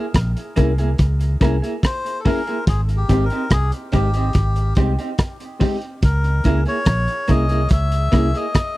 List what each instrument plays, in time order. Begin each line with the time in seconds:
0.14 fingered electric bass A#1, kick, cross-stick, closed hi-hat
0.37 closed hi-hat
0.56 fingered electric bass C2, clean electric guitar A#3 E4 G#4, reed electric piano C#4 E4 A#4, kick, closed hi-hat
0.78 clean electric guitar A#3 E4 G#4, reed electric piano E4 A#4, closed hi-hat
0.98 fingered electric bass C#2, kick, closed hi-hat
1.21 closed hi-hat
1.40 fingered electric bass C2, clean electric guitar A#3 E4 G#4, reed electric piano C#4 E4 A#4, kick, cross-stick, closed hi-hat
1.62 clean electric guitar A#3 E4 G#4, closed hi-hat
1.83 melodica C5, kick, cross-stick, closed hi-hat
2.06 closed hi-hat
2.20 melodica A4
2.25 clean electric guitar A#3 E4 G#4, reed electric piano C#4 E4 A#4, melodica A#4, kick, open hi-hat
2.47 clean electric guitar A#3 E4 G#4, closed hi-hat
2.67 fingered electric bass G#1, melodica G#4, kick, closed hi-hat
2.89 closed hi-hat
2.97 melodica G4
3.09 fingered electric bass G#1, reed electric piano G#3 C4 G4, clean electric guitar C4 D#4 G4, kick, closed hi-hat
3.25 melodica A#4
3.30 clean electric guitar C4 D#4 G4, closed hi-hat
3.50 fingered electric bass C2, melodica G#4, kick, cross-stick, closed hi-hat
3.72 closed hi-hat
3.92 fingered electric bass G#1, reed electric piano G#3 C4 G4, clean electric guitar C4 D#4 G4, melodica G4, kick, closed hi-hat
4.14 reed electric piano C4 G4, clean electric guitar C4 D#4 G4, closed hi-hat
4.33 fingered electric bass G#1, kick, closed hi-hat
4.56 closed hi-hat
4.75 fingered electric bass C2, reed electric piano G#3 C4 G4, clean electric guitar C4 D#4 G4, kick, closed hi-hat
4.99 clean electric guitar C4 D#4 G4, closed hi-hat
5.18 kick, cross-stick, closed hi-hat
5.40 closed hi-hat
5.60 reed electric piano G#3 C4 G4, clean electric guitar C4 D#4 G4, kick, open hi-hat
5.82 closed hi-hat
6.02 fingered electric bass C#2, melodica A#4, kick, closed hi-hat
6.24 closed hi-hat
6.44 fingered electric bass C#2, reed electric piano A#3 C#4 E4, clean electric guitar A#3 E4 G#4, kick, closed hi-hat
6.66 clean electric guitar A#3 E4 G#4, melodica C#5, closed hi-hat
6.85 fingered electric bass A#1, kick, cross-stick, closed hi-hat
7.08 closed hi-hat
7.28 fingered electric bass C2, clean electric guitar A#3 E4 G#4, reed electric piano A#3 C#4 E4, melodica D#5, kick, closed hi-hat
7.49 clean electric guitar A#3 E4 G#4, reed electric piano C#4 E4, closed hi-hat
7.69 fingered electric bass C#2, melodica E5, kick, closed hi-hat
7.92 closed hi-hat
8.12 fingered electric bass C2, clean electric guitar A#3 E4 G#4, reed electric piano A#3 C#4 E4, kick, cross-stick, closed hi-hat
8.34 clean electric guitar A#3 E4 G#4, melodica D#5, closed hi-hat
8.54 kick, cross-stick, closed hi-hat